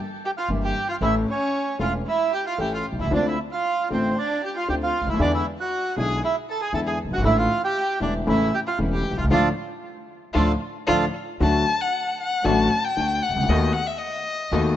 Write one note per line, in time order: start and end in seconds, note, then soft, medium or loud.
0.25 0.31 G4 medium
0.25 0.31 G5 medium
0.37 0.50 F4 medium
0.37 0.49 F5 medium
0.49 0.71 G1 medium
0.49 0.72 G1 soft
0.49 0.72 G2 soft
0.49 0.71 E3 soft
0.49 0.72 G3 soft
0.49 0.72 A#3 soft
0.49 0.72 E4 soft
0.49 0.72 G4 soft
0.63 0.87 G4 medium
0.63 0.88 G4 medium
0.63 0.90 G5 medium
0.89 0.95 F4 medium
0.89 0.97 F4 medium
0.89 0.96 F5 medium
1.01 1.23 A1 medium
1.01 1.23 A2 medium
1.01 1.23 E3 medium
1.01 1.23 A3 medium
1.01 1.24 A3 medium
1.01 1.23 C#4 medium
1.01 1.24 C#4 medium
1.01 1.13 E4 medium
1.01 1.24 E4 medium
1.01 1.15 E4 medium
1.01 1.23 A4 medium
1.01 1.15 E5 medium
1.29 1.77 C#4 medium
1.29 1.78 C#4 medium
1.29 1.78 C#5 medium
1.79 2.01 E1 soft
1.79 2.01 E1 medium
1.79 2.01 E2 soft
1.79 2.01 E3 soft
1.79 2.01 A3 soft
1.79 2.02 A3 soft
1.79 2.01 C#4 soft
1.79 2.02 C#4 soft
1.79 2.02 E4 medium
1.79 1.92 F4 medium
1.79 1.94 F4 medium
1.79 2.02 A4 soft
1.79 1.94 F5 medium
2.07 2.31 E4 medium
2.07 2.32 E4 medium
2.07 2.34 E5 medium
2.32 2.44 G4 medium
2.32 2.46 G4 medium
2.32 2.46 G5 medium
2.47 2.59 F4 medium
2.47 2.60 F5 medium
2.58 2.81 A1 soft
2.58 2.81 A2 medium
2.58 2.81 E3 soft
2.58 2.81 A3 soft
2.58 2.82 A3 soft
2.58 2.81 C#4 soft
2.58 2.82 C#4 soft
2.58 2.82 E4 soft
2.58 2.72 G4 medium
2.58 2.81 A4 soft
2.58 2.72 G5 medium
2.74 2.85 F4 medium
2.74 2.86 F4 medium
2.74 2.86 F5 medium
2.92 2.99 B1 soft
2.99 3.04 C2 medium
2.99 3.05 C2 medium
2.99 3.11 E4 medium
2.99 3.12 E4 soft
2.99 3.12 E5 medium
3.05 3.12 C#2 medium
3.11 3.34 D2 medium
3.11 3.34 D3 medium
3.11 3.34 A3 medium
3.11 3.34 C4 medium
3.11 3.34 D4 medium
3.11 3.25 D4 medium
3.11 3.34 F4 medium
3.11 3.35 F4 medium
3.11 3.27 D5 medium
3.16 3.26 D4 medium
3.27 3.38 E4 medium
3.27 3.39 E4 medium
3.27 3.39 E5 medium
3.52 3.88 F4 medium
3.52 3.89 F4 medium
3.52 3.88 F5 medium
3.90 4.12 A1 medium
3.90 4.12 A2 soft
3.90 4.12 D3 soft
3.90 4.12 A3 soft
3.90 4.12 C4 soft
3.90 4.15 C4 medium
3.90 4.16 C4 soft
3.90 4.13 D4 soft
3.90 4.12 F4 soft
3.90 4.13 F4 medium
3.90 4.18 C5 medium
4.18 4.41 D4 medium
4.18 4.42 D4 medium
4.18 4.44 D5 medium
4.44 4.55 G4 medium
4.44 4.56 G4 medium
4.44 4.57 G5 medium
4.57 4.68 F4 medium
4.57 4.68 F5 medium
4.68 4.90 D2 soft
4.68 4.90 D2 medium
4.68 4.90 D3 soft
4.68 4.90 A3 soft
4.68 4.90 C4 soft
4.68 4.90 D4 soft
4.68 4.90 F4 soft
4.68 4.75 G4 medium
4.68 4.75 G5 medium
4.83 5.06 F4 medium
4.83 5.09 F5 medium
5.01 5.07 C#2 soft
5.07 5.13 D2 medium
5.07 5.20 E4 medium
5.07 5.21 E5 medium
5.14 5.19 D#2 medium
5.14 5.20 D#2 medium
5.19 5.41 E2 medium
5.19 5.41 D3 medium
5.19 5.41 E3 medium
5.19 5.41 G#3 medium
5.19 5.41 B3 medium
5.19 5.42 D4 medium
5.19 5.33 D4 medium
5.19 5.41 E4 medium
5.19 5.42 E4 medium
5.19 5.32 D5 medium
5.34 5.46 E4 medium
5.34 5.46 E5 medium
5.59 5.95 F#4 medium
5.59 5.95 F#5 medium
5.97 6.18 B1 medium
5.97 6.19 B1 medium
5.97 6.19 B2 soft
5.97 6.18 D3 soft
5.97 6.18 G#3 soft
5.97 6.19 G#3 soft
5.97 6.19 B3 soft
5.97 6.19 D4 soft
5.97 6.19 E4 soft
5.97 6.19 E4 medium
5.97 6.22 G#4 medium
5.97 6.22 G#5 medium
6.24 6.35 E4 medium
6.24 6.36 E4 medium
6.24 6.36 E5 medium
6.50 6.61 A4 medium
6.50 6.61 A5 medium
6.62 6.73 G#4 medium
6.62 6.73 G#5 medium
6.73 6.95 E2 medium
6.73 6.95 E2 soft
6.73 6.95 D3 soft
6.73 6.95 E3 medium
6.73 6.95 G#3 soft
6.73 6.95 B3 soft
6.73 6.95 D4 soft
6.73 6.95 E4 soft
6.73 6.95 E4 medium
6.73 6.80 A4 medium
6.73 6.80 A5 medium
6.87 6.98 G#4 medium
6.87 6.99 G#4 medium
6.87 6.99 G#5 medium
7.05 7.10 F#1 soft
7.05 7.12 F#1 soft
7.11 7.17 G1 medium
7.11 7.18 G1 medium
7.11 7.25 F#4 medium
7.11 7.24 F#4 medium
7.11 7.24 F#5 medium
7.18 7.23 G#1 medium
7.18 7.25 G#1 medium
7.24 7.46 A1 medium
7.24 7.46 A2 medium
7.24 7.46 D3 medium
7.24 7.46 E3 medium
7.24 7.46 A3 medium
7.24 7.46 D4 medium
7.24 7.46 E4 medium
7.24 7.37 E4 medium
7.24 7.46 E4 medium
7.24 7.37 E4 medium
7.24 7.37 E5 medium
7.38 7.62 F4 medium
7.38 7.62 F5 medium
7.64 7.99 G4 medium
7.64 7.99 G5 medium
8.00 8.23 E1 medium
8.00 8.23 E2 soft
8.00 8.22 D3 soft
8.00 8.23 E3 soft
8.00 8.23 A3 soft
8.00 8.23 A3 medium
8.00 8.23 D4 soft
8.00 8.13 D4 medium
8.00 8.14 D4 medium
8.00 8.23 E4 soft
8.00 8.23 E4 medium
8.00 8.14 D5 medium
8.27 8.49 A1 medium
8.27 8.49 A2 medium
8.27 8.49 C#3 medium
8.27 8.49 E3 medium
8.27 8.49 A3 medium
8.27 8.49 C#4 medium
8.27 8.49 E4 medium
8.27 8.52 E4 medium
8.27 8.55 E5 medium
8.54 8.60 G4 medium
8.54 8.60 G5 medium
8.67 8.78 F4 medium
8.67 8.79 F4 medium
8.67 8.79 F5 medium
8.78 9.01 E1 medium
8.78 9.00 E2 soft
8.78 9.00 C#3 soft
8.78 9.00 E3 soft
8.78 9.01 A3 soft
8.78 9.01 C#4 soft
8.78 9.01 E4 soft
8.93 9.16 G4 medium
8.93 9.17 G4 medium
8.93 9.17 G5 medium
9.11 9.17 B1 soft
9.17 9.24 C2 medium
9.17 9.23 C2 medium
9.17 9.24 F4 medium
9.17 9.26 F4 medium
9.17 9.26 F5 medium
9.24 9.30 C#2 medium
9.24 9.31 C#2 medium
9.31 9.50 D2 medium
9.31 9.47 A2 medium
9.31 9.47 D3 medium
9.31 9.47 F3 medium
9.31 9.47 A3 medium
9.31 9.47 D4 medium
9.31 9.47 F4 medium
9.31 9.49 F4 medium
9.31 9.49 A4 medium
9.31 9.49 D5 medium
10.33 10.54 D2 medium
10.33 10.52 A2 medium
10.33 10.51 D3 medium
10.33 10.51 F3 medium
10.33 10.51 A3 medium
10.33 10.51 D4 medium
10.33 10.51 F4 medium
10.33 10.52 F4 medium
10.33 10.52 A4 medium
10.33 10.52 D5 medium
10.87 11.08 D2 medium
10.87 11.05 A2 medium
10.87 11.05 D3 medium
10.87 11.05 F3 medium
10.87 11.04 A3 medium
10.87 11.04 D4 medium
10.87 11.04 F4 medium
10.87 11.05 F4 medium
10.87 11.05 A4 medium
10.87 11.05 D5 medium
11.40 11.63 D2 medium
11.40 11.63 D3 medium
11.40 11.63 F#3 medium
11.40 11.62 A3 medium
11.40 11.63 A3 medium
11.40 11.63 D4 medium
11.40 11.63 F#4 medium
11.40 11.82 A5 medium
11.81 12.20 F#5 medium
12.21 12.46 F#5 medium
12.44 12.67 A1 medium
12.44 12.67 A2 medium
12.44 12.67 D3 medium
12.44 12.67 F#3 medium
12.44 12.67 A3 medium
12.44 12.67 D4 medium
12.44 12.67 F#4 medium
12.44 12.86 A5 medium
12.84 13.24 G5 medium
12.96 13.19 D2 soft
12.96 13.19 D2 medium
12.96 13.19 D3 medium
12.96 13.18 A3 soft
12.96 13.19 D4 soft
12.96 13.19 F#4 medium
13.23 13.51 F#5 medium
13.29 13.35 C2 soft
13.29 13.36 C2 soft
13.36 13.42 C#2 medium
13.36 13.43 C#2 medium
13.42 13.48 D2 medium
13.42 13.50 D2 medium
13.49 13.71 D#2 medium
13.49 13.71 D#3 medium
13.49 13.71 A3 medium
13.49 13.71 B3 medium
13.49 13.71 D#4 medium
13.49 13.72 F#4 medium
13.49 13.71 A4 medium
13.49 13.75 D#5 medium
13.73 13.88 F#5 medium
13.87 14.00 E5 medium
13.98 14.76 D#5 medium
14.52 14.73 D#2 medium
14.52 14.74 D#2 medium
14.52 14.74 D#3 medium
14.52 14.74 A3 medium
14.52 14.73 B3 medium
14.52 14.74 B3 medium
14.52 14.73 D#4 medium
14.52 14.74 F#4 medium
14.52 14.74 A4 medium